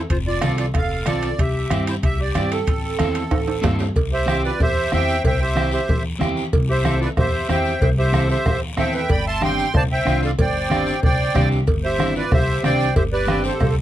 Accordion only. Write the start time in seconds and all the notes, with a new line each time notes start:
0.11 C5
0.27 D5
0.59 D5
0.77 F5
1.07 D5
1.39 E5
1.88 C5
2.05 E5
2.22 D5
2.53 A4
4.13 C5 E5
4.45 B4 D5
4.62 C5 E5
4.93 E5 G5
5.26 E5 G5
5.41 C5 E5
5.73 C5 E5
6.70 C5 E5
7.01 B4 D5
7.18 C5 E5
7.50 E5 G5
7.82 E5 G5
7.99 C5 E5
8.31 C5 E5
8.79 E5 G5
8.95 E5 G5
9.11 G5 B5
9.27 A5 C6
9.44 G5 C6
9.76 D5 A5
9.92 E5 G5
10.25 D5 F5
10.41 D5 G5
11.04 D5 G5
11.84 C5 E5
12.17 B4 D5
12.33 C5 E5
12.64 D5 G5
12.96 C5 E5
13.13 B4 D5
13.45 A4 C5